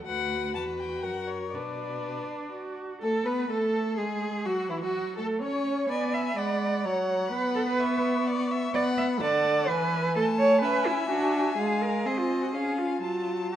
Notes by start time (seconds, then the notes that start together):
0.06 D2 F#4 B4 F#5
0.54 E2 B4 A5
0.80 G5
1.02 F#2 A#4 F#5
1.27 C#5
1.53 B2 D4 B4 D5
2.28 D4
2.53 F#4
3.02 A3 A4
3.26 B3 B4
3.50 A3 A4
3.97 G#3 G#4
4.45 F#3 F#4
4.69 E3 E4
4.81 F#3 F#4
5.17 A3 A4
5.42 C#4 C#5
5.89 B3 D5 G#5 B5
6.13 E5
6.36 G#3 D5 F#5
6.84 F#3 C#5 F#5 A#5
7.09 A#5
7.32 B3 B4 B5
7.55 A4
7.67 B4
7.80 E5 C#6
8.27 D5
8.51 E5
8.74 B3 D5 F#5 B5
8.97 E5
9.20 D3 D5 F#5 A5
9.68 E3 B4 G#5
10.15 A3 A4 A5
10.39 C#5
10.62 C#4 B4 E5
10.86 E4
11.10 D4 F#4
11.58 G#3 G#4 F5
11.82 A#4
12.06 C4 G#4 D#5
12.18 F4
12.42 F#4
12.53 C#4 G#4 F5 G#5
12.78 F4
13.02 F#3 F4 A5
13.52 F#4 A5